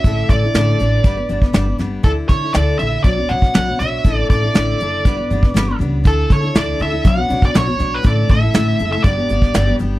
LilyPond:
<<
  \new Staff \with { instrumentName = "Lead electric guitar" } { \time 4/4 \key d \major \tempo 4 = 120 e''8 d''2. r8 | a'8 cis''8 d''8 e''8 d''8 fis''8 fis''8 e''8~ | e''8 d''2. r8 | a'8 cis''8 d''8 e''8 fis''8. d''16 cis''8. b'16 |
d''8 e''4~ e''16 e''16 d''4. r8 | }
  \new Staff \with { instrumentName = "Steel-string acoustic guitar" } { \time 4/4 \key d \major <a, d d' e' a'>8. <d' e' a'>16 <a, d d' e' a'>8 <d d' e' a'>8 <g b d' b'>16 <b d' b'>16 <g b d' b'>16 <b d' b'>16 <g b d' b'>16 <b d' b'>16 <g b d' b'>8 | <d d' e' a'>8. <d' e' a'>16 <d d' e' a'>8 <d d' e' a'>8 <b, fis b d' fis' cis''>16 <b d' fis' cis''>16 <b d' fis' cis''>8 <b, fis b d' fis' cis''>16 <b d' fis' cis''>16 <b d' fis' cis''>8 | <a, d d' e' a'>8. <d' e' a'>16 <a, d d' e' a'>8 <d d' e' a'>8 <g b d' b'>16 <b d' b'>16 <g b d' b'>16 <b d' b'>16 <g b d' b'>16 <b d' b'>16 <g b d' b'>8 | <d d' e' a'>8. <d' e' a'>16 <d d' e' a'>8 <d d' e' a'>16 <d' e' a'>16 <b, fis b d' fis' cis''>16 <b d' fis' cis''>16 <b d' fis' cis''>16 <b d' cis''>16 <b, fis b d' fis' cis''>16 <b d' fis' cis''>16 <b d' fis' cis''>8 |
<a, d a e' a'>8. <a e' a'>16 <a, d a e' a'>8 <d a e' a'>16 <a e' a'>16 <g, d g b d' g'>16 <g b d' g'>16 <g b d' g'>8 <g, d g b d' g'>16 <g b d' g'>16 <g b d' g'>8 | }
  \new Staff \with { instrumentName = "Upright bass" } { \clef bass \time 4/4 \key d \major a,,8 a,,8 a,,8 a,,8 g,,8 g,,8 g,,8 g,,8 | d,8 d8 d,8 bes,,8 b,,8 b,,8 b,,8 b,,8 | a,,8 a,,8 a,,8 fis,,8 g,,8 g,,8 g,,8 cis,8 | d,8 d8 d,8 d,8 b,,8 b,,8 b,,8 b,,8 |
a,,8 a,,8 a,,8 fis,,8 g,,8 g,,8 g,,8 g,,8 | }
  \new DrumStaff \with { instrumentName = "Drums" } \drummode { \time 4/4 <hh bd>8 <hh bd>8 <hh sn>8 hh8 <hh bd>8 hh16 bd16 <hh sn>8 <hh sn>8 | <hh bd>8 <hh bd>8 <hh sn>8 hh8 <hh bd>8 hh16 bd16 <hh sn>8 <hh sn>8 | <hh bd>8 <hh bd>8 <hh sn>8 hh8 <hh bd>8 hh16 bd16 <hh sn>8 hh8 | <hh bd>8 <hh bd>8 <hh sn>8 hh8 <hh bd>8 hh16 bd16 <hh sn>8 <hh sn>8 |
<hh bd>8 <hh bd>8 <hh sn>8 hh8 <hh bd>8 hh16 bd16 <hh sn>8 hh8 | }
>>